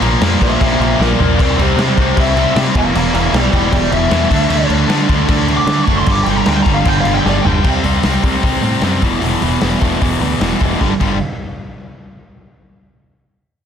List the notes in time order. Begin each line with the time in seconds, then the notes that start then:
0.01 A#1 A#2 F3 A#3, crash
0.21 F2 A#2 F3 A#3, snare, crash
0.39 A#1 A#2 F3 A#3 C5 E5, kick, crash
0.59 A#1 A#2 F3 A#3 C5, kick, crash
0.63 E5
0.79 A#1 A#2 F3 A#3 C5 E5, crash
0.99 A#1 A#2 F3 A#3 A#4 D5, snare
1.19 A#1 A#2 F3 A#3 A#4 D5, floor tom
1.38 C2 C3 G3 C4 A#4 D5, kick, splash, crash
1.58 C2 C3 G3 C4 G4, crash
1.62 C5
1.77 C3 G3 C4 G4 C5, snare, crash
1.97 C2 C3 G3 C4 G4, kick, crash
2.01 C5
2.16 C2 C3 G3 C4 E5, kick, crash
2.36 C3 G3 C4, crash
2.56 C3 G3 C4, snare, crash
2.75 E1 E2 B2 E3 F5 A#5, kick, crash
2.94 E1 E2 B2 E3 F5 A#5, crash
3.13 E1 E2 B2 E3 F5 A#5, crash
3.33 B1 E2 B2 E3 D5 G5, snare, crash
3.52 E1 E2 B2 E3 D5 G5, kick, crash
3.72 E1 E2 B2 E3 D5 G5, kick, crash
3.91 E1 E2 B2 E3 E5, crash
4.10 E2 B2 E3, snare, crash
4.30 D2 D3 A3 D4, kick, crash
4.49 D2 D3 A3 D4, crash
4.69 D2 D3 A3 D4, crash
4.88 D3 A3 D4, snare, crash
5.09 D2 D3 A3 D4, kick, crash
5.28 D2 D3 A3 D4, kick, crash
5.47 D3 A3 D4, crash
5.57 D6
5.67 D3 A3 D4, snare, crash
5.83 D3 C#6, crash
5.87 F#1 A3 D4, kick
5.97 C6
6.06 G1 G2 D3 G3, kick, crash
6.11 D6
6.23 G1 G2 D3 G5, crash
6.27 G3
6.36 A#5
6.45 D2 G2 D3 G3, snare, crash
6.49 G5
6.62 G1 G2 A#5, kick, crash
6.67 D3 G3
6.74 F5
6.85 G1 G2 D3 G3 G5, kick, crash
7.01 G2 F5, crash
7.05 G1 D3 G3
7.15 G5
7.24 G1 G2 D3 G3, snare
7.29 D5
7.41 G1 G2 D3 G5, floor tom
7.46 G3
7.64 C2 C3 G3 C4, kick, crash
7.84 C2 C3 G3 C4, open hi-hat
8.03 C2 C3 G3 C4, snare, open hi-hat
8.23 C2 C3 G3 C4, kick, open hi-hat
8.43 C2 C3 G3 C4, kick, open hi-hat
8.63 A2 C3 G3 C4, open hi-hat
8.82 F#2 C3 G3 C4, snare, open hi-hat
9.02 E1 E2 B2 E3, kick, open hi-hat
9.22 E1 E2 B2 E3, open hi-hat
9.42 E1 E2 B2 E3, open hi-hat
9.61 E1 E2 B2 E3, snare, open hi-hat
9.81 E1 E2 B2 E3, kick, open hi-hat
10.01 E1 E2 B2 E3, kick, open hi-hat
10.20 D2 E2 B2 E3, open hi-hat
10.40 E1 E2 B2 E3, snare, open hi-hat
10.60 E1 E2 B2 E3, kick, open hi-hat
10.80 G1 G2 D3 G3, kick, snare
11.00 G1 G2 D3 G3, kick, crash